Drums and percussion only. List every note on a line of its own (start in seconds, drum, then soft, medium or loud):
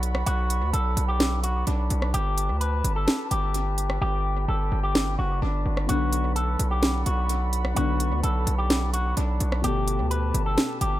0.03 closed hi-hat medium
0.15 cross-stick loud
0.27 closed hi-hat medium
0.50 closed hi-hat medium
0.74 closed hi-hat medium
0.97 closed hi-hat medium
1.20 snare loud
1.20 closed hi-hat medium
1.44 closed hi-hat medium
1.67 closed hi-hat medium
1.90 closed hi-hat medium
2.02 cross-stick medium
2.14 closed hi-hat medium
2.38 closed hi-hat medium
2.61 closed hi-hat medium
2.85 closed hi-hat medium
3.08 snare loud
3.08 closed hi-hat medium
3.31 closed hi-hat medium
3.54 closed hi-hat medium
3.78 closed hi-hat medium
3.90 cross-stick medium
4.95 snare loud
5.77 cross-stick medium
5.89 closed hi-hat medium
6.13 closed hi-hat medium
6.36 closed hi-hat medium
6.59 closed hi-hat medium
6.83 snare loud
6.83 closed hi-hat medium
7.06 closed hi-hat medium
7.29 closed hi-hat medium
7.53 closed hi-hat medium
7.65 cross-stick medium
7.76 closed hi-hat medium
8.00 closed hi-hat medium
8.24 closed hi-hat medium
8.47 closed hi-hat medium
8.70 snare loud
8.70 closed hi-hat medium
8.94 closed hi-hat medium
9.17 closed hi-hat medium
9.40 closed hi-hat medium
9.52 cross-stick loud
9.64 closed hi-hat medium
9.88 closed hi-hat medium
10.11 closed hi-hat medium
10.35 closed hi-hat medium
10.58 snare loud
10.58 closed hi-hat medium
10.81 closed hi-hat medium